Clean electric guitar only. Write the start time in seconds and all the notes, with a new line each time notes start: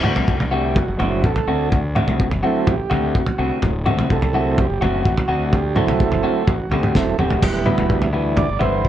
0.03 D3 A3 C4 F#4
0.51 D3 A3 C4 F#4
0.99 D3 A3 C4 F#4
1.48 D3 A3 C4 F#4
1.95 D3 A3 C4 F#4
2.43 D3 A3 C4 F#4
2.90 D3 A3 C4 F#4
3.38 D3 A3 C4 F#4
3.86 D3 A3 C4 F#4
4.34 D3 A3 C4 F#4
4.81 D3 A3 C4 F#4
5.28 D3 A3 C4 F#4
5.76 D3 A3 C4 F#4
6.23 D3 A3 C4 F#4
6.71 D3 A3 C4 F#4
7.19 D3 A3 C4 F#4
7.66 E3 G3 B3 E4
8.13 E3 G3 B3 E4
8.59 E3 G3 B3 E4